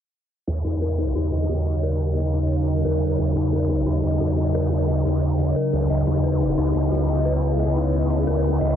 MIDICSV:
0, 0, Header, 1, 5, 480
1, 0, Start_track
1, 0, Tempo, 338983
1, 671, Time_signature, 4, 2, 24, 8
1, 12404, End_track
2, 0, Start_track
2, 0, Title_t, "Synth bell"
2, 0, Program_c, 0, 98
2, 912, Note_on_c, 0, 63, 74
2, 1126, Note_off_c, 0, 63, 0
2, 1151, Note_on_c, 0, 70, 72
2, 1294, Note_off_c, 0, 70, 0
2, 1392, Note_on_c, 0, 63, 72
2, 1606, Note_off_c, 0, 63, 0
2, 1632, Note_on_c, 0, 63, 99
2, 1717, Note_off_c, 0, 63, 0
2, 1872, Note_on_c, 0, 75, 73
2, 2086, Note_off_c, 0, 75, 0
2, 2112, Note_on_c, 0, 66, 71
2, 2326, Note_off_c, 0, 66, 0
2, 2351, Note_on_c, 0, 75, 73
2, 2494, Note_off_c, 0, 75, 0
2, 2591, Note_on_c, 0, 70, 101
2, 2734, Note_off_c, 0, 70, 0
2, 2832, Note_on_c, 0, 70, 71
2, 2974, Note_off_c, 0, 70, 0
2, 3071, Note_on_c, 0, 75, 74
2, 3285, Note_off_c, 0, 75, 0
2, 3311, Note_on_c, 0, 63, 72
2, 3525, Note_off_c, 0, 63, 0
2, 3791, Note_on_c, 0, 75, 70
2, 4005, Note_off_c, 0, 75, 0
2, 4031, Note_on_c, 0, 70, 94
2, 4174, Note_off_c, 0, 70, 0
2, 4750, Note_on_c, 0, 63, 73
2, 4965, Note_off_c, 0, 63, 0
2, 4991, Note_on_c, 0, 70, 75
2, 5134, Note_off_c, 0, 70, 0
2, 5231, Note_on_c, 0, 63, 76
2, 5445, Note_off_c, 0, 63, 0
2, 5471, Note_on_c, 0, 63, 96
2, 5557, Note_off_c, 0, 63, 0
2, 5711, Note_on_c, 0, 75, 73
2, 5925, Note_off_c, 0, 75, 0
2, 5951, Note_on_c, 0, 66, 75
2, 6165, Note_off_c, 0, 66, 0
2, 6191, Note_on_c, 0, 75, 72
2, 6334, Note_off_c, 0, 75, 0
2, 6432, Note_on_c, 0, 70, 99
2, 6574, Note_off_c, 0, 70, 0
2, 6671, Note_on_c, 0, 70, 68
2, 6814, Note_off_c, 0, 70, 0
2, 6913, Note_on_c, 0, 75, 73
2, 7126, Note_off_c, 0, 75, 0
2, 7151, Note_on_c, 0, 63, 74
2, 7365, Note_off_c, 0, 63, 0
2, 7631, Note_on_c, 0, 75, 74
2, 7845, Note_off_c, 0, 75, 0
2, 7872, Note_on_c, 0, 70, 94
2, 8014, Note_off_c, 0, 70, 0
2, 8351, Note_on_c, 0, 75, 98
2, 8437, Note_off_c, 0, 75, 0
2, 8591, Note_on_c, 0, 63, 70
2, 8805, Note_off_c, 0, 63, 0
2, 8832, Note_on_c, 0, 71, 72
2, 8974, Note_off_c, 0, 71, 0
2, 9071, Note_on_c, 0, 63, 74
2, 9285, Note_off_c, 0, 63, 0
2, 9311, Note_on_c, 0, 63, 103
2, 9397, Note_off_c, 0, 63, 0
2, 9550, Note_on_c, 0, 75, 69
2, 9765, Note_off_c, 0, 75, 0
2, 9790, Note_on_c, 0, 66, 76
2, 10005, Note_off_c, 0, 66, 0
2, 10030, Note_on_c, 0, 75, 68
2, 10174, Note_off_c, 0, 75, 0
2, 10270, Note_on_c, 0, 71, 99
2, 10414, Note_off_c, 0, 71, 0
2, 10510, Note_on_c, 0, 71, 70
2, 10654, Note_off_c, 0, 71, 0
2, 10751, Note_on_c, 0, 75, 75
2, 10965, Note_off_c, 0, 75, 0
2, 10991, Note_on_c, 0, 63, 73
2, 11205, Note_off_c, 0, 63, 0
2, 11471, Note_on_c, 0, 75, 68
2, 11685, Note_off_c, 0, 75, 0
2, 11711, Note_on_c, 0, 70, 102
2, 11854, Note_off_c, 0, 70, 0
2, 12191, Note_on_c, 0, 75, 104
2, 12277, Note_off_c, 0, 75, 0
2, 12404, End_track
3, 0, Start_track
3, 0, Title_t, "Synth drone"
3, 0, Program_c, 1, 95
3, 672, Note_on_c, 1, 49, 79
3, 672, Note_on_c, 1, 54, 72
3, 672, Note_on_c, 1, 63, 85
3, 8295, Note_off_c, 1, 54, 0
3, 8295, Note_off_c, 1, 63, 0
3, 8351, Note_on_c, 1, 64, 89
3, 8352, Note_on_c, 1, 59, 73
3, 12404, Note_off_c, 1, 49, 0
3, 12404, Note_off_c, 1, 59, 0
3, 12404, Note_off_c, 1, 64, 0
3, 12404, End_track
4, 0, Start_track
4, 0, Title_t, "Wobble bass"
4, 0, Program_c, 2, 39
4, 672, Note_on_c, 2, 39, 92
4, 892, Note_off_c, 2, 39, 0
4, 911, Note_on_c, 2, 40, 95
4, 1612, Note_off_c, 2, 40, 0
4, 1631, Note_on_c, 2, 39, 98
4, 1852, Note_off_c, 2, 39, 0
4, 1871, Note_on_c, 2, 39, 97
4, 2092, Note_off_c, 2, 39, 0
4, 2111, Note_on_c, 2, 39, 96
4, 4012, Note_off_c, 2, 39, 0
4, 4031, Note_on_c, 2, 39, 94
4, 4492, Note_off_c, 2, 39, 0
4, 4511, Note_on_c, 2, 39, 93
4, 4732, Note_off_c, 2, 39, 0
4, 4751, Note_on_c, 2, 40, 92
4, 5452, Note_off_c, 2, 40, 0
4, 5471, Note_on_c, 2, 39, 95
4, 5692, Note_off_c, 2, 39, 0
4, 5712, Note_on_c, 2, 39, 93
4, 5932, Note_off_c, 2, 39, 0
4, 5952, Note_on_c, 2, 40, 94
4, 6787, Note_off_c, 2, 40, 0
4, 6787, Note_on_c, 2, 39, 94
4, 7132, Note_off_c, 2, 39, 0
4, 7152, Note_on_c, 2, 39, 93
4, 7852, Note_off_c, 2, 39, 0
4, 8112, Note_on_c, 2, 37, 95
4, 8332, Note_off_c, 2, 37, 0
4, 8351, Note_on_c, 2, 37, 92
4, 8572, Note_off_c, 2, 37, 0
4, 8592, Note_on_c, 2, 39, 93
4, 9292, Note_off_c, 2, 39, 0
4, 9311, Note_on_c, 2, 37, 101
4, 9532, Note_off_c, 2, 37, 0
4, 9550, Note_on_c, 2, 37, 97
4, 9772, Note_off_c, 2, 37, 0
4, 9791, Note_on_c, 2, 37, 97
4, 11692, Note_off_c, 2, 37, 0
4, 11712, Note_on_c, 2, 37, 95
4, 12172, Note_off_c, 2, 37, 0
4, 12191, Note_on_c, 2, 37, 95
4, 12404, Note_off_c, 2, 37, 0
4, 12404, End_track
5, 0, Start_track
5, 0, Title_t, "Drums"
5, 671, Note_on_c, 9, 42, 76
5, 813, Note_off_c, 9, 42, 0
5, 911, Note_on_c, 9, 42, 90
5, 1052, Note_off_c, 9, 42, 0
5, 1151, Note_on_c, 9, 42, 74
5, 1292, Note_off_c, 9, 42, 0
5, 1391, Note_on_c, 9, 42, 89
5, 1532, Note_off_c, 9, 42, 0
5, 1631, Note_on_c, 9, 42, 77
5, 1773, Note_off_c, 9, 42, 0
5, 1871, Note_on_c, 9, 42, 95
5, 2013, Note_off_c, 9, 42, 0
5, 2111, Note_on_c, 9, 42, 83
5, 2253, Note_off_c, 9, 42, 0
5, 2351, Note_on_c, 9, 42, 95
5, 2493, Note_off_c, 9, 42, 0
5, 2591, Note_on_c, 9, 42, 77
5, 2733, Note_off_c, 9, 42, 0
5, 2831, Note_on_c, 9, 42, 92
5, 2973, Note_off_c, 9, 42, 0
5, 3071, Note_on_c, 9, 42, 80
5, 3212, Note_off_c, 9, 42, 0
5, 3311, Note_on_c, 9, 42, 91
5, 3452, Note_off_c, 9, 42, 0
5, 3551, Note_on_c, 9, 42, 83
5, 3692, Note_off_c, 9, 42, 0
5, 3791, Note_on_c, 9, 42, 94
5, 3933, Note_off_c, 9, 42, 0
5, 4030, Note_on_c, 9, 42, 83
5, 4172, Note_off_c, 9, 42, 0
5, 4271, Note_on_c, 9, 42, 97
5, 4412, Note_off_c, 9, 42, 0
5, 4511, Note_on_c, 9, 42, 81
5, 4653, Note_off_c, 9, 42, 0
5, 4750, Note_on_c, 9, 42, 89
5, 4892, Note_off_c, 9, 42, 0
5, 4990, Note_on_c, 9, 42, 75
5, 5132, Note_off_c, 9, 42, 0
5, 5230, Note_on_c, 9, 42, 91
5, 5372, Note_off_c, 9, 42, 0
5, 5471, Note_on_c, 9, 42, 80
5, 5612, Note_off_c, 9, 42, 0
5, 5711, Note_on_c, 9, 42, 90
5, 5853, Note_off_c, 9, 42, 0
5, 5951, Note_on_c, 9, 42, 78
5, 6092, Note_off_c, 9, 42, 0
5, 6190, Note_on_c, 9, 42, 93
5, 6332, Note_off_c, 9, 42, 0
5, 6431, Note_on_c, 9, 42, 72
5, 6573, Note_off_c, 9, 42, 0
5, 6671, Note_on_c, 9, 42, 86
5, 6813, Note_off_c, 9, 42, 0
5, 6911, Note_on_c, 9, 42, 75
5, 7052, Note_off_c, 9, 42, 0
5, 7151, Note_on_c, 9, 42, 87
5, 7292, Note_off_c, 9, 42, 0
5, 7391, Note_on_c, 9, 42, 77
5, 7533, Note_off_c, 9, 42, 0
5, 7631, Note_on_c, 9, 42, 91
5, 7773, Note_off_c, 9, 42, 0
5, 7872, Note_on_c, 9, 42, 77
5, 8013, Note_off_c, 9, 42, 0
5, 8111, Note_on_c, 9, 42, 91
5, 8253, Note_off_c, 9, 42, 0
5, 8352, Note_on_c, 9, 42, 73
5, 8493, Note_off_c, 9, 42, 0
5, 8591, Note_on_c, 9, 42, 84
5, 8733, Note_off_c, 9, 42, 0
5, 8831, Note_on_c, 9, 42, 73
5, 8973, Note_off_c, 9, 42, 0
5, 9071, Note_on_c, 9, 42, 84
5, 9213, Note_off_c, 9, 42, 0
5, 9312, Note_on_c, 9, 42, 75
5, 9453, Note_off_c, 9, 42, 0
5, 9551, Note_on_c, 9, 42, 84
5, 9693, Note_off_c, 9, 42, 0
5, 9792, Note_on_c, 9, 42, 76
5, 9933, Note_off_c, 9, 42, 0
5, 10032, Note_on_c, 9, 42, 83
5, 10173, Note_off_c, 9, 42, 0
5, 10271, Note_on_c, 9, 42, 71
5, 10413, Note_off_c, 9, 42, 0
5, 10511, Note_on_c, 9, 42, 80
5, 10652, Note_off_c, 9, 42, 0
5, 10750, Note_on_c, 9, 42, 72
5, 10892, Note_off_c, 9, 42, 0
5, 10990, Note_on_c, 9, 42, 83
5, 11132, Note_off_c, 9, 42, 0
5, 11231, Note_on_c, 9, 42, 74
5, 11372, Note_off_c, 9, 42, 0
5, 11470, Note_on_c, 9, 42, 84
5, 11612, Note_off_c, 9, 42, 0
5, 11711, Note_on_c, 9, 42, 76
5, 11852, Note_off_c, 9, 42, 0
5, 11951, Note_on_c, 9, 42, 83
5, 12093, Note_off_c, 9, 42, 0
5, 12191, Note_on_c, 9, 42, 76
5, 12333, Note_off_c, 9, 42, 0
5, 12404, End_track
0, 0, End_of_file